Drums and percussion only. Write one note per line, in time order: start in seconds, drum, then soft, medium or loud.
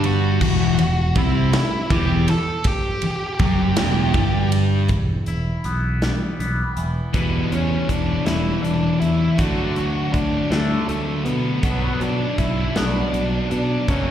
0.04 ride medium
0.41 kick loud
0.41 crash loud
0.78 ride medium
1.15 kick loud
1.15 ride medium
1.53 snare loud
1.53 ride loud
1.90 kick loud
1.90 ride medium
2.28 ride medium
2.64 kick loud
2.64 ride loud
3.02 ride medium
3.39 kick loud
3.39 ride medium
3.76 snare loud
3.76 ride loud
4.14 kick loud
4.14 ride medium
4.52 ride medium
4.88 kick loud
4.88 closed hi-hat medium
5.26 closed hi-hat medium
5.64 closed hi-hat medium
6.02 snare loud
6.02 closed hi-hat medium
6.40 closed hi-hat medium
6.77 closed hi-hat medium
7.14 kick loud
7.14 closed hi-hat medium
7.52 closed hi-hat medium
7.89 kick medium
7.89 closed hi-hat medium
8.26 snare medium
8.26 closed hi-hat medium
8.64 closed hi-hat medium
9.02 closed hi-hat medium
9.38 kick loud
9.38 closed hi-hat medium
9.76 closed hi-hat medium
10.14 kick medium
10.14 closed hi-hat medium
10.52 snare loud
10.52 closed hi-hat medium
10.89 closed hi-hat medium
11.26 closed hi-hat medium
11.63 kick loud
11.63 closed hi-hat medium
12.01 closed hi-hat medium
12.38 kick medium
12.38 closed hi-hat medium
12.76 snare loud
12.76 closed hi-hat medium
13.14 closed hi-hat medium
13.51 closed hi-hat medium
13.88 kick loud
13.88 closed hi-hat medium